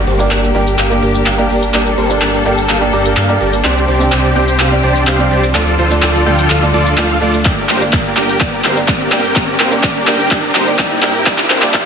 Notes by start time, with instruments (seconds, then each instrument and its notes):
Already playing: string section A#3 D4 G4, riser
0.07 detuned saw bass G1, supersaw synth G4 A#4 C5, open hi-hat
0.19 grand piano A#3 D4 G4 D5, closed hi-hat, cabasa
0.31 detuned saw bass G1, supersaw synth G4 A#4 D5, clap, closed hi-hat, cabasa
0.43 closed hi-hat, cabasa
0.54 detuned saw bass G1, grand piano A#3 D4 G4 D5, supersaw synth G4 A#4 G5, open hi-hat
0.67 closed hi-hat, cabasa
0.79 detuned saw bass G1, supersaw synth G4 A#4 F5, clap, closed hi-hat, cabasa
0.90 grand piano A#3 D4 G4 D5, closed hi-hat, cabasa
1.03 detuned saw bass G1, supersaw synth G4 A#4 D5, open hi-hat
1.15 closed hi-hat, cabasa
1.26 detuned saw bass G1, supersaw synth G4 A#4 F5, clap, closed hi-hat, cabasa
1.38 grand piano A#3 D4 G4 D5, closed hi-hat, cabasa
1.50 detuned saw bass G1, supersaw synth G4 A#4 D5, open hi-hat
1.62 closed hi-hat, cabasa
1.73 detuned saw bass G1, grand piano A#3 D4 G4 D5, supersaw synth G4 A#4 D5, string section A4, clap, closed hi-hat, cabasa
1.86 closed hi-hat, cabasa
1.98 detuned saw bass G1, supersaw synth G4 A#4 C5, open hi-hat
2.09 grand piano A#3 D4 G4 D5, closed hi-hat, cabasa
2.22 detuned saw bass G1, supersaw synth G4 A#4 D5, clap, closed hi-hat, cabasa
2.34 open hi-hat, cabasa
2.45 detuned saw bass G1, grand piano A#3 D4 G4 D5, supersaw synth G4 A#4 G5, open hi-hat
2.57 closed hi-hat, cabasa
2.69 detuned saw bass G1, supersaw synth G4 A#4 F5, clap, closed hi-hat, cabasa
2.81 grand piano A#3 D4 G4 D5, closed hi-hat, cabasa
2.93 detuned saw bass G1, supersaw synth G4 A#4 D5, open hi-hat
3.05 closed hi-hat, cabasa
3.17 detuned saw bass G2, supersaw synth G4 A#4 F5, clap, closed hi-hat, cabasa
3.28 grand piano A#3 D4 G4 D5, closed hi-hat, cabasa
3.41 detuned saw bass G1, supersaw synth G4 A#4 D5, open hi-hat
3.53 closed hi-hat, cabasa
3.64 detuned saw bass C2, string section C3 C4 G4, grand piano C4 D4 G4 D5, supersaw synth G4 C5 D5, clap, closed hi-hat, cabasa
3.77 closed hi-hat, cabasa
3.88 detuned saw bass C2, supersaw synth G4 C5 D5, open hi-hat
4.00 grand piano C4 D4 G4 D5, closed hi-hat, cabasa
4.12 detuned saw bass C2, supersaw synth G4 C5 D5, clap, closed hi-hat, cabasa
4.24 closed hi-hat, cabasa
4.35 detuned saw bass C2, grand piano C4 D4 G4 D5, supersaw synth G4 C5 G5, open hi-hat
4.48 closed hi-hat, cabasa
4.60 detuned saw bass C2, supersaw synth G4 C5 F5, clap, closed hi-hat, cabasa
4.71 grand piano C4 D4 G4 D5, closed hi-hat, cabasa
4.83 detuned saw bass C2, supersaw synth G4 C5 D5, open hi-hat
4.95 closed hi-hat, cabasa
5.07 detuned saw bass C2, supersaw synth G4 C5 F5, clap, closed hi-hat, cabasa
5.19 grand piano C4 D4 G4 D5, closed hi-hat, cabasa
5.31 detuned saw bass C2, supersaw synth G4 C5 D5, open hi-hat
5.43 closed hi-hat, cabasa
5.54 detuned saw bass D2, string section D3 D4 F4 A4, grand piano A3 D4 F4 D5, supersaw synth F4 A4 D5, clap, closed hi-hat, cabasa
5.67 closed hi-hat, cabasa
5.79 detuned saw bass D2, supersaw synth F4 A4 C5, open hi-hat
5.90 grand piano A3 D4 F4 D5, closed hi-hat, cabasa
6.03 detuned saw bass D2, supersaw synth F4 A4 D5, clap, closed hi-hat, cabasa
6.14 open hi-hat, cabasa
6.26 detuned saw bass D2, grand piano A3 D4 F4 D5, supersaw synth F4 A4 G5, open hi-hat
6.38 closed hi-hat, cabasa
6.50 detuned saw bass D2, supersaw synth F4 A4 F5, clap, closed hi-hat, cabasa
6.61 grand piano A3 D4 F4 D5, open hi-hat, cabasa
6.74 detuned saw bass D2, supersaw synth F4 A4 D5, open hi-hat
6.86 closed hi-hat, cabasa
6.97 detuned saw bass D2, grand piano A3 D4 F4 D5, supersaw synth F4 A4 F5, clap, closed hi-hat, cabasa
7.10 closed hi-hat, cabasa
7.21 detuned saw bass D2, grand piano A3 D4 F4 D5, supersaw synth F4 A4 D5, open hi-hat
7.34 closed hi-hat, cabasa
7.45 detuned saw bass G1, grand piano A#3 D4 G4 D5, string section A#3 G4, supersaw synth G4 A#4 D5, kick, clap, closed hi-hat, cabasa
7.57 closed hi-hat, cabasa
7.69 detuned saw bass G1, supersaw synth G4 A#4 C5, clap, open hi-hat
7.80 grand piano A#3 D4 G4 D5, closed hi-hat, cabasa
7.93 detuned saw bass G1, supersaw synth G4 A#4 D5, kick, clap, closed hi-hat, cabasa
8.05 closed hi-hat, cabasa
8.16 detuned saw bass G1, grand piano A#3 D4 G4 D5, supersaw synth G4 A#4 G5, clap, open hi-hat
8.29 closed hi-hat, cabasa
8.40 detuned saw bass G1, grand piano A#3 D4 G4 D5, supersaw synth G4, kick, clap, closed hi-hat, cabasa
8.53 closed hi-hat, cabasa
8.64 detuned saw bass G1, supersaw synth G4 A#4 C5, clap, open hi-hat
8.76 grand piano A#3 D4 G4 D5, closed hi-hat, cabasa
8.88 detuned saw bass G1, supersaw synth G4 A#4 D5, kick, clap, closed hi-hat, cabasa
9.00 closed hi-hat, cabasa
9.12 detuned saw bass G1, grand piano A#3 D4 G4 D5, supersaw synth G4 A#4 G5, clap, open hi-hat
9.24 closed hi-hat, cabasa
9.35 detuned saw bass G1, grand piano A#3 D4 G4 D5, string section C4, supersaw synth G4 A#4 D5, kick, clap, closed hi-hat, cabasa
9.48 closed hi-hat, cabasa
9.60 detuned saw bass G1, supersaw synth G4 A#4 C5, clap, open hi-hat
9.71 grand piano A#3 D4 G4 D5, closed hi-hat, cabasa
9.83 detuned saw bass G1, supersaw synth G4 A#4 D5, kick, clap, closed hi-hat, cabasa
9.95 open hi-hat, cabasa
10.07 detuned saw bass G1, grand piano A#3 D4 G4 D5, supersaw synth G4 A#4 G5, clap, open hi-hat
10.19 closed hi-hat, cabasa
10.31 detuned saw bass G1, grand piano A#3 D4 G4 D5, supersaw synth G4 D5, kick, clap, closed hi-hat, cabasa
10.43 closed hi-hat, cabasa
10.55 detuned saw bass G1, supersaw synth G4 A#4 C5, clap, open hi-hat
10.66 grand piano A#3 D4 G4 D5, closed hi-hat, cabasa
10.79 detuned saw bass G2, supersaw synth G4 A#4 D5, kick, clap, closed hi-hat, cabasa
10.91 closed hi-hat, cabasa
11.02 detuned saw bass G2, grand piano A#3 D4 G4 D5, supersaw synth G4 A#4 G5, clap, open hi-hat
11.15 closed hi-hat, cabasa
11.26 detuned saw bass C2, string section C3 D4, grand piano A#3 D4 G4 D5, supersaw synth G4 A#4 D5, kick, clap, closed hi-hat, cabasa
11.38 clap, closed hi-hat, cabasa
11.50 detuned saw bass C2, supersaw synth G4 A#4 C5, clap, open hi-hat
11.62 grand piano A#3 D4 G4 D5, clap, closed hi-hat, cabasa
11.73 detuned saw bass C2, grand piano A#3 D4 G4, supersaw synth G4 A#4 D5, kick, clap, closed hi-hat, cabasa